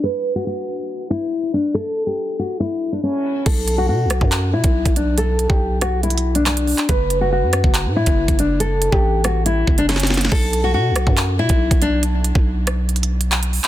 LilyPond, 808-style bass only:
\new Staff \with { instrumentName = "808-style bass" } { \clef bass \time 4/4 \key b \minor \tempo 4 = 140 r1 | r1 | b,,4 b,16. b,,16. fis,8. b,16 b,,8 b,,8.~ | b,,8. b,,2. r16 |
fis,,4~ fis,,16 fis,8 fis,,8 a,8 fis,,8 fis,,8.~ | fis,,8. a,,4.~ a,,16 fis,,4. | b,,4 b,16. b,,16. fis,8. b,16 b,,8 b,,8.~ | b,,8. b,,2. r16 | }